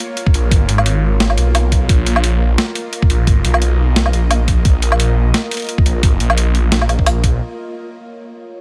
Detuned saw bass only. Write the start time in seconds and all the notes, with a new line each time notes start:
0.34 A#1
0.69 G#1
1.38 B1
1.89 A#1
3.10 A#1
3.45 B1
4.14 A#1
4.65 A#1
5.86 A#1
6.20 A#1
6.72 A#1